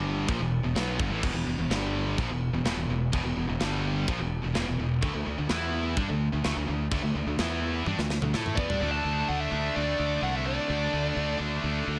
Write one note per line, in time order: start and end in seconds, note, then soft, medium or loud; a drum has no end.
0.00 0.24 G1 loud
0.00 0.28 G2 medium
0.00 0.28 D3 loud
0.00 0.28 G3 loud
0.29 0.39 A#1 medium
0.29 0.39 A#2 medium
0.29 0.40 F3 loud
0.29 kick loud
0.29 china medium
0.40 0.62 E1 medium
0.40 0.59 E2 medium
0.40 0.59 B2 medium
0.64 0.74 E1 medium
0.64 0.76 E2 medium
0.64 0.75 B2 medium
0.75 0.97 B1 medium
0.75 0.99 B2 medium
0.75 0.99 F#3 loud
0.75 0.99 B3 loud
0.75 snare loud
0.75 china medium
0.99 1.09 G1 loud
0.99 1.11 G2 loud
0.99 1.11 D3 loud
0.99 kick loud
1.10 1.21 A1 loud
1.10 1.22 A2 medium
1.10 1.23 E3 loud
1.23 1.33 E1 medium
1.23 1.34 E2 loud
1.23 1.34 B2 loud
1.23 kick loud
1.23 china medium
1.23 crash loud
1.34 1.45 E1 medium
1.34 1.45 E2 medium
1.34 1.45 B2 medium
1.46 1.57 E1 medium
1.46 1.58 E2 medium
1.46 1.58 B2 medium
1.58 1.69 E1 medium
1.58 1.71 E2 medium
1.58 1.71 B2 medium
1.70 2.14 G1 loud
1.70 2.17 G2 medium
1.70 2.18 D3 loud
1.70 2.18 G3 loud
1.70 snare loud
1.70 china medium
2.18 2.29 A#1 medium
2.18 2.29 A#2 loud
2.18 2.30 F3 loud
2.18 kick loud
2.18 china medium
2.29 2.52 E1 medium
2.29 2.49 E2 medium
2.29 2.49 B2 medium
2.53 2.64 E1 medium
2.53 2.64 E2 medium
2.53 2.66 B2 medium
2.64 2.76 E1 medium
2.64 2.77 E2 loud
2.64 2.77 B2 loud
2.64 snare loud
2.64 china medium
2.77 2.88 E1 medium
2.77 2.89 E2 medium
2.77 2.90 B2 medium
2.89 3.11 E1 medium
2.89 3.09 E2 medium
2.89 3.09 B2 medium
3.12 3.24 E1 loud
3.12 3.24 E2 loud
3.12 3.24 B2 loud
3.12 kick loud
3.12 china medium
3.25 3.36 E1 medium
3.25 3.37 E2 medium
3.25 3.37 B2 medium
3.37 3.48 E1 medium
3.37 3.48 E2 medium
3.37 3.49 B2 medium
3.49 3.60 E1 medium
3.49 3.61 E2 medium
3.49 3.61 B2 medium
3.60 4.05 G1 loud
3.60 4.07 G2 medium
3.60 4.08 D3 loud
3.60 4.08 G3 loud
3.60 snare loud
3.60 china medium
4.08 4.19 A#1 loud
4.08 4.19 A#2 medium
4.08 4.20 F3 loud
4.08 kick loud
4.08 china medium
4.19 4.42 E1 medium
4.19 4.39 E2 medium
4.19 4.39 B2 medium
4.44 4.54 E1 medium
4.44 4.54 E2 medium
4.44 4.55 B2 medium
4.55 4.67 E1 medium
4.55 4.66 E2 medium
4.55 4.67 B2 loud
4.55 snare loud
4.55 china medium
4.68 4.78 E1 medium
4.68 4.78 E2 medium
4.68 4.79 B2 medium
4.79 5.01 E1 medium
4.79 4.98 E2 medium
4.79 4.98 B2 medium
5.02 5.14 D2 loud
5.02 5.14 D3 loud
5.02 5.14 A3 loud
5.02 kick loud
5.02 china medium
5.14 5.25 D2 medium
5.14 5.26 D3 medium
5.14 5.26 A3 medium
5.27 5.37 D2 medium
5.27 5.37 D3 medium
5.27 5.37 A3 medium
5.38 5.49 D2 medium
5.38 5.49 D3 medium
5.38 5.50 A3 medium
5.49 5.94 E2 loud
5.49 5.96 E3 loud
5.49 5.97 B3 loud
5.49 5.97 E4 loud
5.49 snare loud
5.49 china medium
5.97 6.08 G2 medium
5.97 6.08 G3 medium
5.97 6.08 D4 loud
5.97 kick loud
5.97 china medium
6.09 6.31 D2 medium
6.09 6.28 D3 medium
6.09 6.28 A3 medium
6.32 6.44 D2 medium
6.32 6.43 D3 medium
6.32 6.44 A3 medium
6.44 6.56 D2 loud
6.44 6.55 D3 loud
6.44 6.55 A3 loud
6.44 snare loud
6.44 china medium
6.56 6.67 D2 medium
6.56 6.66 D3 medium
6.56 6.67 A3 medium
6.68 6.90 D2 medium
6.68 6.87 D3 medium
6.68 6.87 A3 medium
6.92 7.03 D2 loud
6.92 7.02 D3 loud
6.92 7.02 A3 loud
6.92 kick loud
6.92 china medium
7.03 7.14 D2 medium
7.03 7.15 D3 medium
7.03 7.15 A3 medium
7.15 7.25 D2 medium
7.15 7.26 D3 medium
7.15 7.27 A3 medium
7.26 7.38 D2 medium
7.26 7.39 D3 medium
7.26 7.39 A3 medium
7.39 7.83 E2 loud
7.39 7.86 E3 loud
7.39 7.86 B3 loud
7.39 7.87 E4 medium
7.39 snare loud
7.39 china medium
7.86 7.97 G2 loud
7.86 7.97 G3 medium
7.86 7.98 D4 loud
7.86 high tom medium
7.98 8.20 D2 medium
7.98 8.18 D3 medium
7.98 8.18 A3 medium
7.98 snare medium
8.10 snare medium
8.22 8.33 D2 medium
8.22 8.34 D3 medium
8.22 8.32 A3 medium
8.22 mid tom medium
8.33 8.56 A2 medium
8.33 8.56 A3 loud
8.33 8.57 E4 loud
8.33 8.57 A4 loud
8.33 snare medium
8.46 mid tom medium
8.56 8.68 E2 medium
8.56 8.68 E3 medium
8.56 8.68 B3 loud
8.56 8.89 D5 medium
8.56 kick loud
8.69 8.80 G2 medium
8.69 8.80 G3 medium
8.69 8.80 D4 medium
8.69 floor tom loud
8.80 8.99 D2 loud
8.80 9.54 D3 medium
8.80 8.89 A3 medium
8.80 8.90 D4 loud
8.89 8.96 A3 medium
8.89 8.97 D4 medium
8.89 9.28 A5 loud
8.97 9.05 A3 medium
8.97 9.04 D4 medium
9.05 9.22 D2 medium
9.05 9.12 A3 medium
9.05 9.13 D4 medium
9.12 9.19 A3 medium
9.12 9.20 D4 medium
9.20 9.28 A3 medium
9.20 9.28 D4 medium
9.28 9.46 D2 loud
9.28 9.36 A3 medium
9.28 9.36 D4 medium
9.28 9.40 F#5 loud
9.36 9.43 A3 medium
9.36 9.45 D4 medium
9.36 9.76 E5 medium
9.43 9.51 A3 medium
9.43 9.52 D4 loud
9.52 9.69 D2 medium
9.52 10.20 D3 medium
9.52 9.59 A3 medium
9.52 9.60 D4 medium
9.59 9.67 A3 medium
9.59 9.67 D4 loud
9.68 9.76 A3 medium
9.68 9.76 D4 medium
9.74 9.93 D2 medium
9.74 10.68 D3 medium
9.74 9.83 A3 medium
9.74 9.84 D4 loud
9.74 10.24 D5 medium
9.83 9.90 A3 medium
9.83 9.91 D4 medium
9.91 9.98 A3 medium
9.91 9.99 D4 loud
9.98 10.16 D2 medium
9.98 10.05 A3 medium
9.98 10.06 D4 medium
10.05 10.13 A3 medium
10.05 10.15 D4 loud
10.15 10.23 A3 medium
10.15 10.23 D4 medium
10.21 10.57 C2 medium
10.21 10.67 D3 medium
10.21 10.28 A3 medium
10.21 10.31 D4 medium
10.21 10.35 F#5 medium
10.29 10.36 A3 medium
10.29 10.37 D4 medium
10.35 10.45 A3 medium
10.35 10.45 D4 medium
10.35 10.47 E5 medium
10.45 10.52 A3 medium
10.45 10.53 D4 medium
10.45 11.37 D5 medium
10.52 10.60 A3 medium
10.52 10.61 D4 medium
10.61 10.69 A3 medium
10.61 10.69 D4 medium
10.68 10.87 D2 loud
10.68 11.38 D3 medium
10.68 10.77 A3 medium
10.68 10.78 D4 medium
10.77 10.85 A3 medium
10.77 10.86 D4 medium
10.85 10.93 A3 medium
10.85 10.93 D4 medium
10.93 11.11 D2 medium
10.93 11.00 A3 medium
10.93 11.02 D4 medium
11.01 11.09 A3 medium
11.01 11.10 D4 medium
11.09 11.16 A3 medium
11.09 11.18 D4 medium
11.16 11.34 D2 loud
11.16 11.24 A3 medium
11.16 11.25 D4 medium
11.24 11.32 A3 medium
11.24 11.33 D4 medium
11.32 11.40 A3 medium
11.32 11.41 D4 medium
11.40 11.57 D2 medium
11.40 11.99 D3 medium
11.40 11.47 A3 medium
11.40 11.49 D4 medium
11.47 11.55 A3 medium
11.47 11.57 D4 medium
11.56 11.64 A3 medium
11.56 11.65 D4 medium
11.63 11.81 D2 medium
11.63 11.99 D3 medium
11.63 11.71 A3 medium
11.63 11.72 D4 medium
11.72 11.79 A3 medium
11.72 11.80 D4 medium
11.79 11.87 A3 medium
11.79 11.87 D4 medium
11.87 11.99 D2 medium
11.87 11.95 A3 medium
11.87 11.95 D4 medium
11.95 11.99 A3 medium